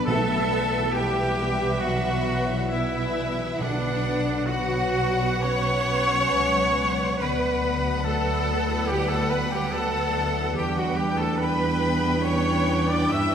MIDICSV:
0, 0, Header, 1, 12, 480
1, 0, Start_track
1, 0, Key_signature, 2, "minor"
1, 0, Tempo, 879765
1, 38, Time_signature, 4, 2, 24, 8
1, 2437, Tempo, 955414
1, 2917, Tempo, 882353
1, 3877, Tempo, 842697
1, 6277, Tempo, 865801
1, 7357, End_track
2, 0, Start_track
2, 0, Title_t, "Flute"
2, 0, Program_c, 0, 73
2, 41, Note_on_c, 0, 81, 83
2, 531, Note_on_c, 0, 79, 87
2, 539, Note_off_c, 0, 81, 0
2, 994, Note_on_c, 0, 78, 82
2, 1002, Note_off_c, 0, 79, 0
2, 1489, Note_on_c, 0, 76, 82
2, 1497, Note_off_c, 0, 78, 0
2, 1819, Note_off_c, 0, 76, 0
2, 1976, Note_on_c, 0, 74, 78
2, 2447, Note_on_c, 0, 78, 85
2, 2454, Note_off_c, 0, 74, 0
2, 2922, Note_on_c, 0, 85, 105
2, 2930, Note_off_c, 0, 78, 0
2, 3876, Note_off_c, 0, 85, 0
2, 3879, Note_on_c, 0, 83, 76
2, 4367, Note_on_c, 0, 81, 92
2, 4376, Note_off_c, 0, 83, 0
2, 4845, Note_off_c, 0, 81, 0
2, 4848, Note_on_c, 0, 79, 80
2, 4960, Note_on_c, 0, 81, 77
2, 4969, Note_off_c, 0, 79, 0
2, 5079, Note_on_c, 0, 83, 81
2, 5088, Note_off_c, 0, 81, 0
2, 5197, Note_on_c, 0, 79, 70
2, 5206, Note_off_c, 0, 83, 0
2, 5319, Note_off_c, 0, 79, 0
2, 5323, Note_on_c, 0, 81, 86
2, 5643, Note_off_c, 0, 81, 0
2, 5803, Note_on_c, 0, 79, 76
2, 5909, Note_off_c, 0, 79, 0
2, 5912, Note_on_c, 0, 78, 70
2, 6038, Note_on_c, 0, 79, 76
2, 6047, Note_off_c, 0, 78, 0
2, 6159, Note_on_c, 0, 81, 74
2, 6168, Note_off_c, 0, 79, 0
2, 6277, Note_on_c, 0, 83, 90
2, 6286, Note_off_c, 0, 81, 0
2, 6753, Note_on_c, 0, 85, 83
2, 6761, Note_off_c, 0, 83, 0
2, 7112, Note_on_c, 0, 86, 79
2, 7121, Note_off_c, 0, 85, 0
2, 7230, Note_on_c, 0, 88, 91
2, 7238, Note_off_c, 0, 86, 0
2, 7357, Note_off_c, 0, 88, 0
2, 7357, End_track
3, 0, Start_track
3, 0, Title_t, "Violin section"
3, 0, Program_c, 1, 48
3, 45, Note_on_c, 1, 81, 85
3, 513, Note_off_c, 1, 81, 0
3, 523, Note_on_c, 1, 79, 82
3, 990, Note_off_c, 1, 79, 0
3, 993, Note_on_c, 1, 78, 79
3, 1477, Note_off_c, 1, 78, 0
3, 1478, Note_on_c, 1, 76, 78
3, 1963, Note_off_c, 1, 76, 0
3, 1970, Note_on_c, 1, 74, 74
3, 2431, Note_off_c, 1, 74, 0
3, 2445, Note_on_c, 1, 78, 80
3, 2921, Note_off_c, 1, 78, 0
3, 2925, Note_on_c, 1, 85, 96
3, 3881, Note_off_c, 1, 85, 0
3, 3884, Note_on_c, 1, 83, 70
3, 4357, Note_off_c, 1, 83, 0
3, 4361, Note_on_c, 1, 81, 82
3, 4844, Note_on_c, 1, 79, 88
3, 4846, Note_off_c, 1, 81, 0
3, 4966, Note_on_c, 1, 81, 77
3, 4968, Note_off_c, 1, 79, 0
3, 5088, Note_off_c, 1, 81, 0
3, 5093, Note_on_c, 1, 83, 84
3, 5210, Note_off_c, 1, 83, 0
3, 5219, Note_on_c, 1, 79, 76
3, 5332, Note_off_c, 1, 79, 0
3, 5337, Note_on_c, 1, 81, 82
3, 5804, Note_off_c, 1, 81, 0
3, 5804, Note_on_c, 1, 79, 69
3, 5918, Note_off_c, 1, 79, 0
3, 5920, Note_on_c, 1, 78, 68
3, 6037, Note_off_c, 1, 78, 0
3, 6039, Note_on_c, 1, 79, 73
3, 6155, Note_on_c, 1, 81, 77
3, 6156, Note_off_c, 1, 79, 0
3, 6273, Note_on_c, 1, 83, 89
3, 6275, Note_off_c, 1, 81, 0
3, 6750, Note_off_c, 1, 83, 0
3, 6753, Note_on_c, 1, 85, 81
3, 7114, Note_on_c, 1, 86, 78
3, 7116, Note_off_c, 1, 85, 0
3, 7231, Note_on_c, 1, 88, 86
3, 7232, Note_off_c, 1, 86, 0
3, 7352, Note_off_c, 1, 88, 0
3, 7357, End_track
4, 0, Start_track
4, 0, Title_t, "Violin section"
4, 0, Program_c, 2, 48
4, 54, Note_on_c, 2, 76, 77
4, 517, Note_off_c, 2, 76, 0
4, 530, Note_on_c, 2, 76, 77
4, 1461, Note_off_c, 2, 76, 0
4, 1477, Note_on_c, 2, 76, 74
4, 1953, Note_off_c, 2, 76, 0
4, 1967, Note_on_c, 2, 78, 73
4, 2432, Note_off_c, 2, 78, 0
4, 2438, Note_on_c, 2, 78, 83
4, 3855, Note_off_c, 2, 78, 0
4, 3888, Note_on_c, 2, 78, 77
4, 5783, Note_off_c, 2, 78, 0
4, 5805, Note_on_c, 2, 79, 65
4, 6268, Note_off_c, 2, 79, 0
4, 6280, Note_on_c, 2, 79, 77
4, 7357, Note_off_c, 2, 79, 0
4, 7357, End_track
5, 0, Start_track
5, 0, Title_t, "Cello section"
5, 0, Program_c, 3, 48
5, 35, Note_on_c, 3, 69, 99
5, 508, Note_off_c, 3, 69, 0
5, 524, Note_on_c, 3, 67, 96
5, 991, Note_off_c, 3, 67, 0
5, 994, Note_on_c, 3, 66, 92
5, 1467, Note_off_c, 3, 66, 0
5, 1481, Note_on_c, 3, 64, 86
5, 1955, Note_off_c, 3, 64, 0
5, 1968, Note_on_c, 3, 62, 91
5, 2440, Note_off_c, 3, 62, 0
5, 2447, Note_on_c, 3, 66, 105
5, 2921, Note_off_c, 3, 66, 0
5, 2923, Note_on_c, 3, 73, 117
5, 3880, Note_off_c, 3, 73, 0
5, 3883, Note_on_c, 3, 71, 94
5, 4366, Note_off_c, 3, 71, 0
5, 4372, Note_on_c, 3, 69, 98
5, 4842, Note_off_c, 3, 69, 0
5, 4849, Note_on_c, 3, 67, 103
5, 4970, Note_off_c, 3, 67, 0
5, 4974, Note_on_c, 3, 69, 97
5, 5090, Note_on_c, 3, 71, 90
5, 5092, Note_off_c, 3, 69, 0
5, 5209, Note_off_c, 3, 71, 0
5, 5209, Note_on_c, 3, 67, 90
5, 5324, Note_off_c, 3, 67, 0
5, 5327, Note_on_c, 3, 69, 101
5, 5797, Note_on_c, 3, 67, 88
5, 5799, Note_off_c, 3, 69, 0
5, 5917, Note_off_c, 3, 67, 0
5, 5925, Note_on_c, 3, 66, 81
5, 6036, Note_on_c, 3, 67, 90
5, 6040, Note_off_c, 3, 66, 0
5, 6155, Note_off_c, 3, 67, 0
5, 6155, Note_on_c, 3, 69, 86
5, 6274, Note_off_c, 3, 69, 0
5, 6276, Note_on_c, 3, 71, 99
5, 6752, Note_off_c, 3, 71, 0
5, 6754, Note_on_c, 3, 73, 101
5, 7117, Note_off_c, 3, 73, 0
5, 7117, Note_on_c, 3, 74, 90
5, 7232, Note_on_c, 3, 76, 101
5, 7236, Note_off_c, 3, 74, 0
5, 7353, Note_off_c, 3, 76, 0
5, 7357, End_track
6, 0, Start_track
6, 0, Title_t, "Oboe"
6, 0, Program_c, 4, 68
6, 34, Note_on_c, 4, 69, 83
6, 507, Note_on_c, 4, 67, 83
6, 515, Note_off_c, 4, 69, 0
6, 981, Note_on_c, 4, 66, 87
6, 989, Note_off_c, 4, 67, 0
6, 1368, Note_off_c, 4, 66, 0
6, 1461, Note_on_c, 4, 64, 76
6, 1798, Note_off_c, 4, 64, 0
6, 1970, Note_on_c, 4, 62, 79
6, 2435, Note_on_c, 4, 66, 85
6, 2443, Note_off_c, 4, 62, 0
6, 2918, Note_on_c, 4, 73, 103
6, 2927, Note_off_c, 4, 66, 0
6, 3866, Note_off_c, 4, 73, 0
6, 3869, Note_on_c, 4, 71, 69
6, 4362, Note_on_c, 4, 69, 82
6, 4370, Note_off_c, 4, 71, 0
6, 4837, Note_on_c, 4, 67, 84
6, 4845, Note_off_c, 4, 69, 0
6, 4960, Note_on_c, 4, 69, 77
6, 4969, Note_off_c, 4, 67, 0
6, 5077, Note_on_c, 4, 71, 76
6, 5085, Note_off_c, 4, 69, 0
6, 5198, Note_off_c, 4, 71, 0
6, 5202, Note_on_c, 4, 67, 74
6, 5321, Note_on_c, 4, 69, 84
6, 5329, Note_off_c, 4, 67, 0
6, 5648, Note_off_c, 4, 69, 0
6, 5803, Note_on_c, 4, 67, 70
6, 5926, Note_on_c, 4, 66, 67
6, 5935, Note_off_c, 4, 67, 0
6, 6030, Note_on_c, 4, 67, 73
6, 6038, Note_off_c, 4, 66, 0
6, 6149, Note_on_c, 4, 69, 72
6, 6158, Note_off_c, 4, 67, 0
6, 6261, Note_on_c, 4, 71, 84
6, 6270, Note_off_c, 4, 69, 0
6, 6731, Note_on_c, 4, 73, 86
6, 6739, Note_off_c, 4, 71, 0
6, 7088, Note_on_c, 4, 74, 75
6, 7096, Note_off_c, 4, 73, 0
6, 7214, Note_on_c, 4, 76, 76
6, 7222, Note_off_c, 4, 74, 0
6, 7351, Note_off_c, 4, 76, 0
6, 7357, End_track
7, 0, Start_track
7, 0, Title_t, "Viola section"
7, 0, Program_c, 5, 48
7, 36, Note_on_c, 5, 71, 72
7, 39, Note_on_c, 5, 59, 72
7, 508, Note_off_c, 5, 71, 0
7, 510, Note_off_c, 5, 59, 0
7, 522, Note_on_c, 5, 71, 78
7, 524, Note_on_c, 5, 59, 76
7, 1457, Note_off_c, 5, 71, 0
7, 1458, Note_off_c, 5, 59, 0
7, 1478, Note_on_c, 5, 71, 73
7, 1479, Note_on_c, 5, 59, 72
7, 1953, Note_off_c, 5, 71, 0
7, 1954, Note_off_c, 5, 59, 0
7, 1966, Note_on_c, 5, 59, 68
7, 1966, Note_on_c, 5, 71, 67
7, 2429, Note_off_c, 5, 59, 0
7, 2429, Note_off_c, 5, 71, 0
7, 2438, Note_on_c, 5, 71, 81
7, 2439, Note_on_c, 5, 59, 75
7, 3855, Note_off_c, 5, 71, 0
7, 3856, Note_off_c, 5, 59, 0
7, 3877, Note_on_c, 5, 71, 81
7, 3880, Note_on_c, 5, 59, 77
7, 5777, Note_off_c, 5, 71, 0
7, 5778, Note_off_c, 5, 59, 0
7, 5802, Note_on_c, 5, 59, 70
7, 5808, Note_on_c, 5, 71, 75
7, 6265, Note_off_c, 5, 71, 0
7, 6266, Note_off_c, 5, 59, 0
7, 6272, Note_on_c, 5, 71, 81
7, 6274, Note_on_c, 5, 59, 79
7, 7357, Note_off_c, 5, 59, 0
7, 7357, Note_off_c, 5, 71, 0
7, 7357, End_track
8, 0, Start_track
8, 0, Title_t, "Harp"
8, 0, Program_c, 6, 46
8, 0, Note_on_c, 6, 54, 57
8, 0, Note_on_c, 6, 59, 53
8, 0, Note_on_c, 6, 62, 56
8, 55, Note_on_c, 6, 47, 71
8, 68, Note_off_c, 6, 62, 0
8, 69, Note_off_c, 6, 54, 0
8, 178, Note_on_c, 6, 55, 53
8, 297, Note_on_c, 6, 64, 59
8, 414, Note_off_c, 6, 55, 0
8, 420, Note_on_c, 6, 55, 52
8, 530, Note_off_c, 6, 59, 0
8, 649, Note_off_c, 6, 55, 0
8, 655, Note_on_c, 6, 55, 53
8, 769, Note_on_c, 6, 57, 46
8, 883, Note_off_c, 6, 55, 0
8, 890, Note_on_c, 6, 55, 51
8, 960, Note_off_c, 6, 57, 0
8, 999, Note_off_c, 6, 47, 0
8, 1006, Note_on_c, 6, 47, 62
8, 1115, Note_on_c, 6, 59, 50
8, 1234, Note_off_c, 6, 64, 0
8, 1241, Note_on_c, 6, 64, 57
8, 1354, Note_off_c, 6, 55, 0
8, 1361, Note_on_c, 6, 55, 51
8, 1486, Note_off_c, 6, 59, 0
8, 1492, Note_on_c, 6, 59, 58
8, 1604, Note_off_c, 6, 55, 0
8, 1610, Note_on_c, 6, 55, 56
8, 1736, Note_on_c, 6, 57, 43
8, 1851, Note_off_c, 6, 55, 0
8, 1858, Note_on_c, 6, 55, 53
8, 1933, Note_off_c, 6, 57, 0
8, 1968, Note_off_c, 6, 47, 0
8, 1974, Note_on_c, 6, 47, 69
8, 1987, Note_off_c, 6, 64, 0
8, 1988, Note_off_c, 6, 55, 0
8, 2093, Note_on_c, 6, 54, 51
8, 2205, Note_on_c, 6, 66, 58
8, 2319, Note_off_c, 6, 54, 0
8, 2325, Note_on_c, 6, 54, 54
8, 2438, Note_off_c, 6, 59, 0
8, 2444, Note_on_c, 6, 59, 57
8, 2555, Note_off_c, 6, 54, 0
8, 2561, Note_on_c, 6, 54, 50
8, 2689, Note_on_c, 6, 55, 46
8, 2809, Note_off_c, 6, 54, 0
8, 2815, Note_on_c, 6, 54, 51
8, 2888, Note_off_c, 6, 55, 0
8, 2923, Note_off_c, 6, 47, 0
8, 2930, Note_on_c, 6, 47, 66
8, 3048, Note_off_c, 6, 59, 0
8, 3168, Note_off_c, 6, 66, 0
8, 3174, Note_on_c, 6, 66, 57
8, 3288, Note_off_c, 6, 54, 0
8, 3295, Note_on_c, 6, 54, 54
8, 3406, Note_on_c, 6, 59, 53
8, 3525, Note_off_c, 6, 54, 0
8, 3531, Note_on_c, 6, 54, 56
8, 3656, Note_on_c, 6, 55, 45
8, 3763, Note_off_c, 6, 54, 0
8, 3769, Note_on_c, 6, 54, 53
8, 3849, Note_off_c, 6, 55, 0
8, 3893, Note_on_c, 6, 50, 66
8, 3903, Note_off_c, 6, 47, 0
8, 4013, Note_on_c, 6, 62, 53
8, 4127, Note_off_c, 6, 66, 0
8, 4133, Note_on_c, 6, 66, 57
8, 4250, Note_off_c, 6, 62, 0
8, 4257, Note_on_c, 6, 62, 52
8, 4365, Note_off_c, 6, 59, 0
8, 4372, Note_on_c, 6, 59, 57
8, 4483, Note_off_c, 6, 62, 0
8, 4490, Note_on_c, 6, 62, 48
8, 4617, Note_on_c, 6, 64, 50
8, 4729, Note_off_c, 6, 62, 0
8, 4736, Note_on_c, 6, 62, 54
8, 4817, Note_off_c, 6, 64, 0
8, 4852, Note_off_c, 6, 50, 0
8, 4859, Note_on_c, 6, 50, 63
8, 4973, Note_off_c, 6, 59, 0
8, 5095, Note_off_c, 6, 66, 0
8, 5102, Note_on_c, 6, 66, 54
8, 5218, Note_off_c, 6, 62, 0
8, 5224, Note_on_c, 6, 62, 52
8, 5345, Note_on_c, 6, 59, 56
8, 5450, Note_off_c, 6, 62, 0
8, 5457, Note_on_c, 6, 62, 53
8, 5575, Note_on_c, 6, 64, 45
8, 5685, Note_off_c, 6, 62, 0
8, 5691, Note_on_c, 6, 62, 53
8, 5770, Note_off_c, 6, 64, 0
8, 5807, Note_on_c, 6, 52, 67
8, 5824, Note_off_c, 6, 50, 0
8, 5824, Note_off_c, 6, 54, 0
8, 5825, Note_off_c, 6, 66, 0
8, 5928, Note_on_c, 6, 64, 51
8, 6048, Note_on_c, 6, 67, 54
8, 6163, Note_off_c, 6, 64, 0
8, 6170, Note_on_c, 6, 64, 50
8, 6279, Note_off_c, 6, 59, 0
8, 6286, Note_on_c, 6, 59, 56
8, 6396, Note_off_c, 6, 64, 0
8, 6402, Note_on_c, 6, 64, 47
8, 6521, Note_on_c, 6, 66, 46
8, 6628, Note_off_c, 6, 64, 0
8, 6635, Note_on_c, 6, 64, 47
8, 6720, Note_off_c, 6, 66, 0
8, 6747, Note_off_c, 6, 52, 0
8, 6754, Note_on_c, 6, 52, 63
8, 6869, Note_off_c, 6, 59, 0
8, 6876, Note_on_c, 6, 59, 49
8, 6994, Note_off_c, 6, 67, 0
8, 7001, Note_on_c, 6, 67, 54
8, 7116, Note_off_c, 6, 64, 0
8, 7123, Note_on_c, 6, 64, 49
8, 7239, Note_off_c, 6, 59, 0
8, 7246, Note_on_c, 6, 59, 55
8, 7354, Note_off_c, 6, 64, 0
8, 7357, Note_off_c, 6, 52, 0
8, 7357, Note_off_c, 6, 59, 0
8, 7357, Note_off_c, 6, 62, 0
8, 7357, Note_off_c, 6, 67, 0
8, 7357, End_track
9, 0, Start_track
9, 0, Title_t, "French horn section"
9, 0, Program_c, 7, 60
9, 52, Note_on_c, 7, 57, 93
9, 516, Note_off_c, 7, 57, 0
9, 527, Note_on_c, 7, 55, 90
9, 993, Note_off_c, 7, 55, 0
9, 1005, Note_on_c, 7, 54, 88
9, 1473, Note_off_c, 7, 54, 0
9, 1481, Note_on_c, 7, 52, 78
9, 1965, Note_off_c, 7, 52, 0
9, 1970, Note_on_c, 7, 50, 83
9, 2441, Note_off_c, 7, 50, 0
9, 2448, Note_on_c, 7, 54, 87
9, 2843, Note_off_c, 7, 54, 0
9, 2929, Note_on_c, 7, 61, 104
9, 3864, Note_off_c, 7, 61, 0
9, 3884, Note_on_c, 7, 59, 79
9, 4357, Note_off_c, 7, 59, 0
9, 4366, Note_on_c, 7, 57, 88
9, 4848, Note_on_c, 7, 55, 84
9, 4849, Note_off_c, 7, 57, 0
9, 4965, Note_on_c, 7, 57, 80
9, 4970, Note_off_c, 7, 55, 0
9, 5088, Note_off_c, 7, 57, 0
9, 5093, Note_on_c, 7, 59, 88
9, 5211, Note_off_c, 7, 59, 0
9, 5211, Note_on_c, 7, 55, 73
9, 5326, Note_off_c, 7, 55, 0
9, 5328, Note_on_c, 7, 57, 87
9, 5784, Note_on_c, 7, 55, 70
9, 5800, Note_off_c, 7, 57, 0
9, 5910, Note_off_c, 7, 55, 0
9, 5913, Note_on_c, 7, 54, 70
9, 6026, Note_on_c, 7, 55, 83
9, 6034, Note_off_c, 7, 54, 0
9, 6142, Note_on_c, 7, 57, 75
9, 6150, Note_off_c, 7, 55, 0
9, 6268, Note_off_c, 7, 57, 0
9, 6277, Note_on_c, 7, 59, 89
9, 6748, Note_on_c, 7, 61, 87
9, 6752, Note_off_c, 7, 59, 0
9, 7105, Note_on_c, 7, 62, 74
9, 7113, Note_off_c, 7, 61, 0
9, 7226, Note_on_c, 7, 64, 83
9, 7230, Note_off_c, 7, 62, 0
9, 7350, Note_off_c, 7, 64, 0
9, 7357, End_track
10, 0, Start_track
10, 0, Title_t, "Trombone section"
10, 0, Program_c, 8, 61
10, 44, Note_on_c, 8, 59, 74
10, 47, Note_on_c, 8, 52, 69
10, 1874, Note_off_c, 8, 52, 0
10, 1874, Note_off_c, 8, 59, 0
10, 1967, Note_on_c, 8, 59, 66
10, 1969, Note_on_c, 8, 54, 69
10, 3857, Note_off_c, 8, 59, 0
10, 3859, Note_off_c, 8, 54, 0
10, 3881, Note_on_c, 8, 59, 71
10, 3882, Note_on_c, 8, 54, 65
10, 5779, Note_off_c, 8, 54, 0
10, 5779, Note_off_c, 8, 59, 0
10, 5808, Note_on_c, 8, 55, 68
10, 5812, Note_on_c, 8, 62, 69
10, 7357, Note_off_c, 8, 55, 0
10, 7357, Note_off_c, 8, 62, 0
10, 7357, End_track
11, 0, Start_track
11, 0, Title_t, "Timpani"
11, 0, Program_c, 10, 47
11, 42, Note_on_c, 10, 47, 93
11, 735, Note_off_c, 10, 47, 0
11, 1968, Note_on_c, 10, 47, 81
11, 2658, Note_off_c, 10, 47, 0
11, 7357, End_track
12, 0, Start_track
12, 0, Title_t, "Double bass section"
12, 0, Program_c, 11, 48
12, 46, Note_on_c, 11, 35, 79
12, 1944, Note_off_c, 11, 35, 0
12, 1970, Note_on_c, 11, 35, 78
12, 3381, Note_off_c, 11, 35, 0
12, 3410, Note_on_c, 11, 37, 66
12, 3882, Note_off_c, 11, 37, 0
12, 3884, Note_on_c, 11, 38, 78
12, 5780, Note_off_c, 11, 38, 0
12, 5797, Note_on_c, 11, 40, 81
12, 7212, Note_off_c, 11, 40, 0
12, 7238, Note_on_c, 11, 43, 67
12, 7357, Note_off_c, 11, 43, 0
12, 7357, End_track
0, 0, End_of_file